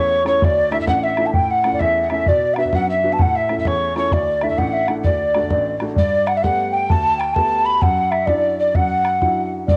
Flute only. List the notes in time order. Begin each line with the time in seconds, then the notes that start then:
Already playing: C#5
0.28 C#5
0.44 D5
0.73 E5
0.81 E5
0.88 F#5
1.03 E5
1.26 A5
1.33 G5
1.51 F#5
1.74 D5
1.82 E5
2.12 E5
2.28 D5
2.54 F#5
2.58 E5
2.67 E5
2.75 F#5
2.90 E5
3.13 A5
3.22 F#5
3.37 E5
3.60 E5
3.67 C#5
3.98 C#5
4.13 D5
4.43 E5
4.51 E5
4.58 F#5
4.73 E5
4.88 F#5
5.05 D5
5.96 D5
6.28 F#5
6.36 E5
6.43 F#5
6.71 G5
6.89 A5
7.18 G5
7.33 A5
7.65 B5
7.82 F#5
8.11 E5
8.26 D5
8.58 D5
8.76 F#5
9.67 D5